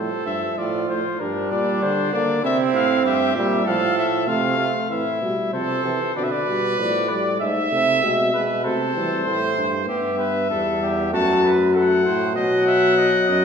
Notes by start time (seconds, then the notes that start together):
Already playing: F3 A4 C5
0.26 G2 E5
0.57 A2 F3 F4 D5
0.89 A2 C5
1.20 G2 G3 D4 A#4
1.51 A#2 D5
1.82 D3 C5
2.12 D3 A#3 D5
2.43 C3 C4 E4 E5
2.73 A2 F5
3.04 G2 G4 E5
3.35 A#2 G3 E5
3.65 A2 F3 A4 F5
3.98 E5
4.27 C3 A3 F4 F5
4.58 C3 F4
4.90 A2 E3 E4 E5
5.21 B2 G3
5.53 C3 F3 A4 C5
5.84 C3 E3
6.15 B2 D3 B4 D5
6.24 E5
6.32 D5
6.47 B2 G3
6.78 A2 F3 D5
7.09 G3 D5
7.40 G#2 G#3 E5
7.71 C3 A3
8.02 B2 G#3
8.33 B2 G#3 B4
8.64 C3 A3 A4 C5
8.96 E3 G3
9.26 A2 A3 C5
9.58 G2
9.87 G2 B3 G4 E5
10.19 B4
10.50 E2 G3 A4
10.82 G4
11.12 F#2 A3 F#4 A5
11.44 B4
11.74 A3 A4 F#5
12.05 A2 C5
12.36 B2 F#3 D#5 F#5
12.67 E5
12.98 D#5
13.29 F#2 D#5